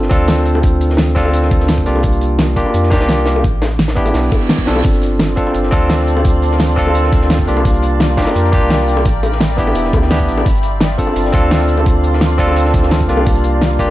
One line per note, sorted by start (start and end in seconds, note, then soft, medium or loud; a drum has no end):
0.00 0.10 C4 medium
0.00 0.10 D4 medium
0.00 0.11 F4 medium
0.00 0.12 A4 medium
0.00 snare soft
0.10 1.85 D2 medium
0.10 1.13 C4 medium
0.10 1.14 D4 medium
0.10 1.14 F4 medium
0.10 1.15 A4 loud
0.10 kick loud
0.10 closed hi-hat medium
0.28 snare loud
0.28 closed hi-hat medium
0.37 snare soft
0.46 closed hi-hat medium
0.55 high bongo medium
0.63 kick loud
0.63 closed hi-hat medium
0.81 closed hi-hat medium
0.90 snare medium
0.97 snare loud
0.97 closed hi-hat medium
1.08 closed hi-hat soft
1.15 1.84 C4 loud
1.15 1.84 D4 medium
1.15 1.84 F4 medium
1.15 1.85 A4 loud
1.15 kick medium
1.15 closed hi-hat medium
1.25 high bongo soft
1.34 closed hi-hat medium
1.43 snare soft
1.51 kick loud
1.51 closed hi-hat medium
1.60 snare soft
1.68 snare loud
1.68 closed hi-hat medium
1.77 kick medium
1.77 closed hi-hat soft
1.85 2.64 C2 medium
1.85 2.54 A#3 medium
1.85 2.54 D4 medium
1.85 2.55 F4 medium
1.85 2.55 G4 medium
1.85 closed hi-hat medium
1.96 high bongo medium
2.03 kick loud
2.03 closed hi-hat medium
2.12 closed hi-hat soft
2.21 closed hi-hat medium
2.39 snare loud
2.39 closed hi-hat medium
2.56 2.89 A#3 medium
2.56 2.89 D4 medium
2.56 2.90 F4 medium
2.56 2.90 G4 medium
2.56 kick medium
2.56 closed hi-hat medium
2.66 high bongo soft
2.74 2.99 F2 medium
2.74 closed hi-hat medium
2.83 snare soft
2.90 3.42 A#3 medium
2.90 3.43 D4 medium
2.90 3.43 F4 medium
2.90 3.44 G4 loud
2.90 kick medium
2.90 snare loud
2.90 closed hi-hat medium
3.01 3.46 C2 medium
3.01 snare loud
3.01 closed hi-hat medium
3.09 snare loud
3.09 closed hi-hat medium
3.18 snare soft
3.26 snare loud
3.26 closed hi-hat medium
3.36 high bongo medium
3.44 4.13 A1 medium
3.44 kick loud
3.44 closed hi-hat medium
3.62 snare loud
3.62 closed hi-hat medium
3.62 high bongo medium
3.71 closed hi-hat soft
3.79 snare loud
3.79 closed hi-hat medium
3.88 snare medium
3.88 closed hi-hat medium
3.95 4.64 B3 loud
3.95 4.65 D4 medium
3.95 4.65 E4 medium
3.95 4.65 G4 loud
3.95 kick medium
3.95 closed hi-hat soft
3.95 closed hi-hat medium
4.06 closed hi-hat medium
4.06 high bongo medium
4.14 4.30 B1 loud
4.14 snare loud
4.14 closed hi-hat medium
4.14 reverse cymbal medium
4.23 closed hi-hat soft
4.32 kick loud
4.32 closed hi-hat medium
4.32 high bongo medium
4.49 snare medium
4.49 snare loud
4.49 closed hi-hat medium
4.58 kick medium
4.58 snare soft
4.66 4.83 B1 medium
4.66 5.35 C4 medium
4.66 5.35 D4 medium
4.66 5.35 F4 medium
4.66 5.36 A4 medium
4.66 snare loud
4.66 closed hi-hat medium
4.76 high bongo medium
4.84 5.36 G1 loud
4.84 7.62 D5 medium
4.84 9.01 F5 medium
4.84 7.62 A5 medium
4.84 7.62 C6 medium
4.84 kick loud
4.84 closed hi-hat medium
4.93 closed hi-hat soft
5.02 closed hi-hat medium
5.19 snare loud
5.19 closed hi-hat medium
5.36 5.70 C4 medium
5.36 5.70 D4 medium
5.36 5.70 F4 medium
5.36 5.70 A4 medium
5.36 kick medium
5.36 closed hi-hat medium
5.47 high bongo soft
5.54 5.71 G1 medium
5.54 closed hi-hat medium
5.63 snare soft
5.71 7.46 D2 medium
5.71 6.75 C4 medium
5.71 6.75 D4 medium
5.71 6.76 F4 medium
5.71 6.76 A4 loud
5.71 kick loud
5.71 closed hi-hat medium
5.90 snare loud
5.90 closed hi-hat medium
5.99 snare soft
6.07 closed hi-hat medium
6.17 high bongo medium
6.25 kick loud
6.25 closed hi-hat medium
6.42 closed hi-hat medium
6.51 snare soft
6.60 snare loud
6.60 closed hi-hat medium
6.69 closed hi-hat soft
6.76 7.45 C4 loud
6.76 7.45 D4 medium
6.76 7.46 F4 medium
6.76 7.46 A4 loud
6.76 kick medium
6.76 closed hi-hat medium
6.87 high bongo soft
6.95 closed hi-hat medium
7.04 snare soft
7.13 kick loud
7.13 closed hi-hat medium
7.21 snare soft
7.30 snare loud
7.30 closed hi-hat medium
7.39 kick medium
7.39 closed hi-hat soft
7.46 8.25 C2 medium
7.46 8.15 A#3 medium
7.46 8.16 D4 medium
7.46 8.16 F4 medium
7.46 8.16 G4 medium
7.46 closed hi-hat medium
7.57 high bongo medium
7.65 9.04 D5 medium
7.65 10.43 G5 medium
7.65 9.04 A#5 medium
7.65 kick loud
7.65 closed hi-hat medium
7.74 closed hi-hat soft
7.83 closed hi-hat medium
8.00 snare loud
8.00 closed hi-hat medium
8.17 8.51 A#3 medium
8.17 8.51 D4 medium
8.17 8.51 F4 medium
8.17 8.51 G4 medium
8.17 kick medium
8.17 snare medium
8.17 closed hi-hat medium
8.22 snare medium
8.22 closed hi-hat medium
8.26 snare loud
8.26 closed hi-hat medium
8.26 high bongo soft
8.35 8.60 F2 medium
8.35 closed hi-hat medium
8.44 snare soft
8.52 9.04 A#3 medium
8.52 9.04 D4 medium
8.52 9.05 F4 medium
8.52 9.05 G4 loud
8.52 kick loud
8.52 closed hi-hat medium
8.62 9.07 C2 medium
8.70 snare loud
8.70 closed hi-hat medium
8.80 snare soft
8.88 closed hi-hat medium
8.97 high bongo medium
9.05 9.74 A1 medium
9.05 13.90 D5 medium
9.05 10.44 E5 medium
9.05 10.44 B5 medium
9.05 kick loud
9.05 closed hi-hat medium
9.23 closed hi-hat medium
9.23 high bongo medium
9.32 snare soft
9.41 snare loud
9.41 closed hi-hat medium
9.50 closed hi-hat soft
9.57 10.09 B3 loud
9.57 10.09 D4 medium
9.57 10.09 E4 medium
9.57 10.10 G4 loud
9.57 kick medium
9.57 closed hi-hat medium
9.67 high bongo medium
9.75 9.92 E1 medium
9.75 closed hi-hat medium
9.85 snare soft
9.93 10.30 D2 loud
9.93 kick loud
9.93 closed hi-hat medium
9.93 high bongo medium
10.02 snare soft
10.10 10.45 B3 medium
10.10 10.45 D4 medium
10.10 10.45 E4 medium
10.10 10.45 G4 medium
10.10 snare loud
10.10 closed hi-hat medium
10.20 kick medium
10.20 closed hi-hat soft
10.28 10.44 A1 medium
10.28 closed hi-hat medium
10.38 high bongo medium
10.46 10.97 G1 medium
10.46 13.90 F5 medium
10.46 13.24 A5 medium
10.46 13.24 C6 medium
10.46 kick loud
10.46 closed hi-hat medium
10.55 closed hi-hat soft
10.63 closed hi-hat medium
10.80 snare loud
10.80 closed hi-hat medium
10.98 11.31 C4 medium
10.98 11.31 D4 medium
10.98 11.32 F4 medium
10.98 11.32 A4 medium
10.98 kick medium
10.98 closed hi-hat medium
11.07 high bongo soft
11.16 11.32 G1 medium
11.16 closed hi-hat medium
11.25 snare soft
11.32 13.08 D2 medium
11.32 12.36 C4 medium
11.32 12.37 D4 medium
11.32 12.37 F4 medium
11.32 12.37 A4 loud
11.32 kick loud
11.32 closed hi-hat medium
11.51 snare loud
11.51 closed hi-hat medium
11.59 snare soft
11.68 closed hi-hat medium
11.77 high bongo medium
11.86 kick loud
11.86 closed hi-hat medium
12.04 closed hi-hat medium
12.13 snare soft
12.21 snare loud
12.21 closed hi-hat medium
12.29 closed hi-hat soft
12.38 13.07 C4 loud
12.38 13.07 D4 medium
12.38 13.07 F4 medium
12.38 13.08 A4 loud
12.38 kick medium
12.38 closed hi-hat medium
12.48 high bongo soft
12.56 closed hi-hat medium
12.65 snare soft
12.74 kick loud
12.74 closed hi-hat medium
12.83 snare soft
12.91 snare loud
12.91 closed hi-hat medium
13.01 kick medium
13.01 closed hi-hat soft
13.08 13.87 C2 medium
13.08 13.77 A#3 medium
13.08 13.77 D4 medium
13.08 13.77 F4 medium
13.08 13.78 G4 medium
13.08 closed hi-hat medium
13.17 high bongo medium
13.26 13.90 G5 medium
13.26 13.90 A#5 medium
13.26 kick loud
13.26 closed hi-hat medium
13.26 closed hi-hat loud
13.35 closed hi-hat soft
13.44 closed hi-hat medium
13.61 snare loud
13.61 closed hi-hat medium
13.79 13.90 A#3 medium
13.79 13.90 D4 medium
13.79 13.90 F4 medium
13.79 13.90 G4 medium
13.79 kick medium
13.79 closed hi-hat medium